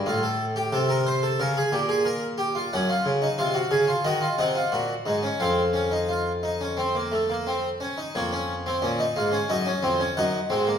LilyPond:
<<
  \new Staff \with { instrumentName = "Harpsichord" } { \time 4/4 \key bes \minor \tempo 4 = 90 << { r1 | ges''4 f''4 ees''8 ges''4. | f''2.~ f''8 r8 | des''2 ees''4 ges''4 | } \\ { f'16 a'8 g'16 a'16 bes'16 c''16 a'16 bes'16 aes'16 g'16 aes'16 bes'8 g'16 f'16 | des'16 f'8 ees'16 f'16 ges'16 aes'16 f'16 ges'16 f'16 ees'16 f'16 ges'8 ees'16 des'16 | c'8 des'16 ees'16 f'8 ees'16 des'16 c'16 bes16 a16 bes16 c'8 des'16 ees'16 | bes16 des'8 c'16 des'16 ees'16 f'16 des'16 ees'16 des'16 c'16 des'16 ees'8 c'16 bes16 | } >> }
  \new Staff \with { instrumentName = "Harpsichord" } { \clef bass \time 4/4 \key bes \minor a,4 c4 des8 bes,4. | ges,8 des8 c8 des8 ees8 c8 bes,8 aes,8 | f,2.~ f,8 r8 | f,4 bes,8 aes,8 ges,8 f,8 ges,8 aes,8 | }
>>